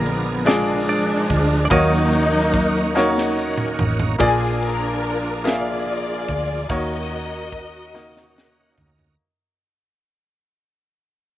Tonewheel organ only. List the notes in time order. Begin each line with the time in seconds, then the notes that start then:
Already playing: F3 D4 G#4 A#4
1.71 D#3 A#3 C#4 F#4
4.18 F3 A#3 D4 G4
4.26 G#4
6.70 A#3 C#4 D#4 F#4
8.36 F#5
8.80 A#5